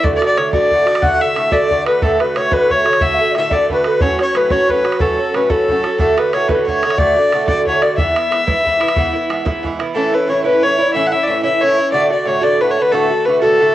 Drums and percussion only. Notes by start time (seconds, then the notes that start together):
0.04 bodhran
0.22 bodhran
0.38 bodhran
0.53 bodhran
0.71 bodhran
0.87 bodhran
0.95 bodhran
1.03 bodhran
1.36 bodhran
1.52 bodhran
1.71 bodhran
1.86 bodhran
2.02 bodhran
2.20 bodhran
2.36 bodhran
2.52 bodhran
2.70 bodhran
2.86 bodhran
2.93 bodhran
3.01 bodhran
3.35 bodhran
3.51 bodhran
3.69 bodhran
3.84 bodhran
4.00 bodhran
4.19 bodhran
4.35 bodhran
4.50 bodhran
4.69 bodhran
4.85 bodhran
4.92 bodhran
5.00 bodhran
5.34 bodhran
5.50 bodhran
5.68 bodhran
5.84 bodhran
5.99 bodhran
6.18 bodhran
6.33 bodhran
6.49 bodhran
6.68 bodhran
6.83 bodhran
6.90 bodhran
6.98 bodhran
7.32 bodhran
7.48 bodhran
7.66 bodhran
7.82 bodhran
7.98 bodhran
8.16 bodhran
8.32 bodhran
8.48 bodhran
8.66 bodhran
8.81 bodhran
8.88 bodhran
8.96 bodhran
9.30 bodhran
9.46 bodhran
9.64 bodhran
9.80 bodhran